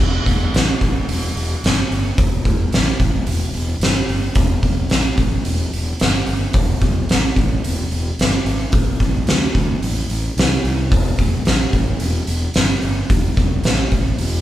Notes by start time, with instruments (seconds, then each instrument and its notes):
0.00 fingered electric bass E1
0.26 fingered electric bass E1, kick, open hi-hat
0.53 fingered electric bass A1, snare, open hi-hat
0.81 fingered electric bass A1, kick, open hi-hat
1.08 fingered electric bass E1, open hi-hat
1.35 fingered electric bass E1, open hi-hat
1.63 fingered electric bass G1, snare, open hi-hat
1.91 fingered electric bass G1, open hi-hat
2.18 fingered electric bass E1, kick, open hi-hat
2.45 fingered electric bass E1, kick, open hi-hat
2.73 fingered electric bass A1, snare, open hi-hat
2.99 fingered electric bass A1, kick, open hi-hat
3.27 fingered electric bass E1, open hi-hat
3.53 fingered electric bass E1, open hi-hat
3.80 fingered electric bass G1, snare, open hi-hat
4.08 fingered electric bass G1, open hi-hat
4.35 fingered electric bass E1, kick, open hi-hat
4.63 fingered electric bass E1, kick, open hi-hat
4.90 fingered electric bass A1, snare, open hi-hat
5.17 fingered electric bass A1, kick, open hi-hat
5.45 fingered electric bass E1, open hi-hat
5.73 fingered electric bass E1, open hi-hat
6.00 fingered electric bass G1, snare, open hi-hat
6.26 fingered electric bass G1, open hi-hat
6.53 fingered electric bass E1, kick, open hi-hat
6.81 fingered electric bass E1, kick, open hi-hat
7.09 fingered electric bass A1, snare, open hi-hat
7.36 fingered electric bass A1, kick, open hi-hat
7.64 fingered electric bass E1, open hi-hat
7.91 fingered electric bass E1, open hi-hat
8.19 fingered electric bass G1, snare, open hi-hat
8.45 fingered electric bass G#1, open hi-hat
8.72 fingered electric bass A1, kick, open hi-hat
9.00 fingered electric bass A1, kick, open hi-hat
9.27 fingered electric bass D2, snare, open hi-hat
9.55 fingered electric bass D2, kick, open hi-hat
9.82 fingered electric bass A1, open hi-hat
10.10 fingered electric bass A1, open hi-hat
10.37 fingered electric bass C2, snare, open hi-hat
10.64 fingered electric bass C2, open hi-hat
10.91 fingered electric bass E1, kick, open hi-hat
11.18 fingered electric bass E1, kick, open hi-hat
11.45 fingered electric bass A1, snare, open hi-hat
11.73 fingered electric bass A1, kick, open hi-hat
12.00 fingered electric bass E1, open hi-hat
12.27 fingered electric bass E1, open hi-hat
12.54 fingered electric bass G1, snare, open hi-hat
12.82 fingered electric bass G1, open hi-hat
13.10 fingered electric bass E1, kick, open hi-hat
13.37 fingered electric bass E1, kick, open hi-hat
13.64 fingered electric bass A1, snare, open hi-hat
13.91 fingered electric bass A1, kick, open hi-hat
14.18 fingered electric bass E1, open hi-hat